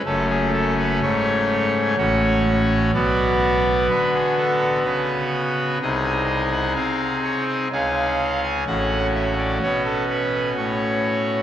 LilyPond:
<<
  \new Staff \with { instrumentName = "Pipe organ" } { \time 3/4 \key fis \minor \tempo 4 = 63 << { a'16 gis'16 a'16 b'16 cis''4 cis''4 | d''4 b'16 gis'16 a'8 b'4 | dis''8. fis''16 eis''8 cis''16 dis''16 eis''8. gis''16 | fis''8 e''16 d''16 cis''16 a'16 b'8 cis''4 | } \\ { <a cis'>2 <cis' fis'>4 | <b fis'>2. | <dis' gis'>2 <cis' gis'>4 | <cis' fis'>2. | } >> }
  \new Staff \with { instrumentName = "Pipe organ" } { \clef bass \time 3/4 \key fis \minor <fis,, fis,>4 gis,4 <a,, a,>4 | <b,, b,>4 d4 cis4 | <bis,, bis,>4 bis4 <cis, cis>4 | <a,, a,>4 b,4 a,4 | }
>>